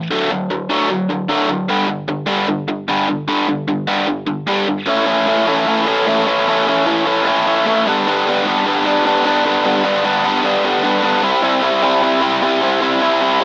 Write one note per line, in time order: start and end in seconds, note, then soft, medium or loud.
0.11 0.29 D3 medium
0.11 0.29 F#3 medium
0.11 0.30 A3 loud
0.30 0.48 D3 medium
0.30 0.48 F#3 medium
0.50 0.68 D3 medium
0.50 0.68 F#3 medium
0.69 0.88 D3 medium
0.69 0.89 F#3 medium
0.69 0.89 A3 loud
0.89 1.07 D3 medium
0.89 1.08 F#3 medium
1.09 1.27 D3 medium
1.09 1.27 F#3 medium
1.28 1.48 D3 medium
1.28 1.48 F#3 medium
1.28 1.48 A3 loud
1.49 1.67 D3 medium
1.49 1.67 F#3 medium
1.68 1.86 G2 loud
1.68 1.87 D3 loud
1.68 1.88 G3 loud
1.88 2.06 G2 medium
1.88 2.07 D3 medium
2.09 2.25 G2 medium
2.09 2.26 D3 medium
2.27 2.46 G2 medium
2.27 2.47 D3 loud
2.27 2.47 G3 loud
2.48 2.66 G2 medium
2.48 2.66 D3 medium
2.68 2.86 G2 medium
2.68 2.86 D3 medium
2.88 3.07 G2 medium
2.88 3.07 D3 loud
2.88 3.08 G3 medium
3.09 3.27 G2 medium
3.09 3.27 D3 medium
3.28 3.47 G2 loud
3.28 3.47 D3 loud
3.28 3.47 G3 medium
3.48 3.66 G2 medium
3.48 3.66 D3 medium
3.68 3.86 G2 medium
3.68 3.86 D3 medium
3.87 4.06 G2 loud
3.87 4.06 D3 medium
3.87 4.07 G3 loud
4.07 4.25 G2 medium
4.07 4.26 D3 medium
4.26 4.45 G2 medium
4.26 4.45 D3 medium
4.47 4.66 G2 medium
4.47 4.67 D3 loud
4.47 4.67 G3 loud
4.68 4.86 G2 medium
4.68 4.86 D3 medium
4.87 5.06 A2 loud
4.87 5.06 E3 loud
4.87 5.07 A3 loud
4.87 5.08 C#4 loud
4.87 5.08 E4 loud
5.06 5.26 A2 medium
5.06 5.27 E3 medium
5.06 5.27 A3 medium
5.06 5.29 C#4 loud
5.06 5.29 E4 medium
5.27 5.46 A2 medium
5.27 5.46 E3 medium
5.27 5.47 A3 medium
5.27 5.47 C#4 medium
5.27 5.47 E4 loud
5.47 5.66 A2 loud
5.47 5.66 E3 loud
5.47 5.67 A3 loud
5.47 5.67 C#4 loud
5.47 5.68 E4 loud
5.67 5.85 A2 medium
5.67 5.86 E3 medium
5.67 5.86 A3 medium
5.67 5.87 C#4 loud
5.67 5.87 E4 loud
5.86 6.05 A2 medium
5.86 6.06 E3 medium
5.86 6.06 A3 medium
5.86 6.07 C#4 medium
5.86 6.08 E4 loud
6.07 6.25 A2 medium
6.07 6.26 E3 loud
6.07 6.26 A3 loud
6.07 6.27 C#4 loud
6.07 6.28 E4 loud
6.27 6.46 A2 medium
6.27 6.46 E3 medium
6.27 6.47 A3 medium
6.27 6.48 C#4 loud
6.27 6.48 E4 medium
6.47 6.66 A2 loud
6.47 6.67 E3 loud
6.47 6.67 A3 loud
6.47 6.67 C#4 loud
6.47 6.68 E4 loud
6.67 6.84 A2 medium
6.67 6.85 E3 medium
6.67 6.85 A3 medium
6.67 6.86 C#4 medium
6.67 6.86 E4 loud
6.85 7.05 A2 medium
6.85 7.05 E3 medium
6.85 7.05 A3 medium
6.85 7.06 C#4 loud
6.85 7.06 E4 medium
7.06 7.25 A2 loud
7.06 7.25 E3 loud
7.06 7.26 A3 loud
7.06 7.27 C#4 loud
7.06 7.27 E4 loud
7.26 7.45 A2 medium
7.26 7.46 E3 medium
7.26 7.46 A3 medium
7.26 7.47 C#4 loud
7.26 7.47 E4 loud
7.46 7.64 A2 medium
7.46 7.65 E3 loud
7.46 7.65 A3 loud
7.46 7.66 C#4 medium
7.46 7.67 E4 loud
7.65 7.84 A2 loud
7.65 7.85 E3 loud
7.65 7.85 A3 loud
7.65 7.85 C#4 loud
7.65 7.86 E4 loud
7.86 8.07 G2 medium
7.86 8.06 D3 loud
7.86 8.08 G3 loud
7.86 8.09 B3 loud
7.86 8.09 D4 loud
8.07 8.27 G2 loud
8.07 8.26 D3 loud
8.07 8.28 G3 loud
8.07 8.28 B3 loud
8.07 8.29 D4 loud
8.27 8.45 G2 medium
8.27 8.45 D3 medium
8.27 8.46 G3 loud
8.27 8.47 B3 loud
8.27 8.47 D4 loud
8.45 8.65 G2 medium
8.45 8.65 D3 medium
8.45 8.67 G3 medium
8.45 8.67 B3 loud
8.45 8.67 D4 medium
8.66 8.83 G2 loud
8.66 8.84 D3 loud
8.66 8.86 G3 loud
8.66 8.85 B3 loud
8.66 8.86 D4 loud
8.85 9.04 G2 medium
8.85 9.04 D3 loud
8.85 9.06 G3 loud
8.85 9.06 B3 medium
8.85 9.06 D4 loud
9.05 9.23 G2 medium
9.05 9.24 D3 medium
9.05 9.25 G3 medium
9.05 9.24 B3 loud
9.05 9.26 D4 loud
9.24 9.43 G2 loud
9.24 9.45 D3 loud
9.24 9.45 G3 loud
9.24 9.45 B3 loud
9.24 9.46 D4 loud
9.44 9.63 G2 medium
9.44 9.63 D3 loud
9.44 9.65 G3 medium
9.44 9.65 B3 medium
9.44 9.65 D4 loud
9.64 9.82 G2 loud
9.64 9.83 D3 loud
9.64 9.84 G3 loud
9.64 9.84 B3 loud
9.64 9.84 D4 loud
9.83 10.03 G2 medium
9.83 10.04 D3 medium
9.83 10.04 G3 medium
9.83 10.04 B3 loud
9.83 10.05 D4 loud
10.04 10.23 G2 medium
10.04 10.24 D3 medium
10.04 10.25 G3 medium
10.04 10.25 B3 medium
10.04 10.25 D4 medium
10.24 10.42 G2 loud
10.24 10.44 D3 loud
10.24 10.45 G3 loud
10.24 10.44 B3 loud
10.24 10.45 D4 loud
10.43 10.63 G2 medium
10.43 10.63 D3 medium
10.43 10.65 G3 loud
10.43 10.65 B3 loud
10.43 10.65 D4 loud
10.64 10.82 G2 medium
10.64 10.82 D3 medium
10.64 10.84 G3 medium
10.64 10.84 B3 loud
10.64 10.84 D4 medium
10.83 11.02 G2 loud
10.83 11.03 D3 loud
10.83 11.04 G3 loud
10.83 11.04 B3 loud
10.83 11.04 D4 loud
11.03 11.22 G2 medium
11.03 11.22 D3 medium
11.03 11.23 G3 medium
11.03 11.23 B3 medium
11.03 11.23 D4 loud
11.23 11.43 C3 loud
11.23 11.43 G3 loud
11.23 11.43 C4 loud
11.23 11.44 E4 loud
11.43 11.61 C3 medium
11.43 11.63 G3 medium
11.43 11.63 C4 loud
11.43 11.63 E4 loud
11.62 11.82 C3 medium
11.62 11.82 G3 loud
11.62 11.83 C4 medium
11.62 11.84 E4 loud
11.82 12.01 C3 medium
11.82 12.01 G3 loud
11.82 12.02 C4 loud
11.82 12.02 E4 loud
12.02 12.21 C3 medium
12.02 12.21 G3 medium
12.02 12.22 C4 medium
12.02 12.22 E4 loud
12.22 12.42 C3 medium
12.22 12.43 G3 medium
12.22 12.43 C4 loud
12.22 12.43 E4 medium
12.43 12.61 C3 loud
12.43 12.62 G3 loud
12.43 12.62 C4 loud
12.43 12.63 E4 loud
12.62 12.80 C3 medium
12.62 12.81 G3 medium
12.62 12.81 C4 loud
12.62 12.82 E4 loud
12.82 13.00 C3 loud
12.82 13.00 G3 loud
12.82 13.02 C4 loud
12.82 13.01 E4 loud
13.01 13.19 C3 medium
13.01 13.20 G3 medium
13.01 13.21 C4 medium
13.01 13.21 E4 loud
13.21 13.39 C3 medium
13.21 13.40 G3 loud
13.21 13.40 C4 medium
13.21 13.40 E4 loud
13.40 13.44 C3 loud
13.40 13.44 G3 loud